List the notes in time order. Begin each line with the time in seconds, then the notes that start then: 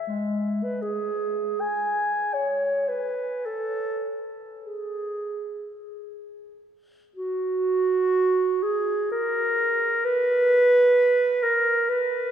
0.07 G#3
0.63 B4
0.82 G#4
1.61 G#5
2.34 C#5
2.89 B4
3.46 A4
4.63 G#4
7.16 F#4
8.63 G#4
9.12 A#4
10.05 B4
11.43 A#4
11.89 B4